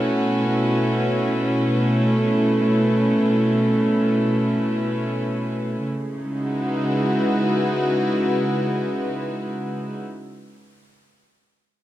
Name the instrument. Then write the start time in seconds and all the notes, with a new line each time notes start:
string section
Already playing: B2 A3 C#4 E4 F#4 B4
5.85 C#3
6.00 G#3
6.13 D#4
6.24 E4
6.38 F#4
6.53 B4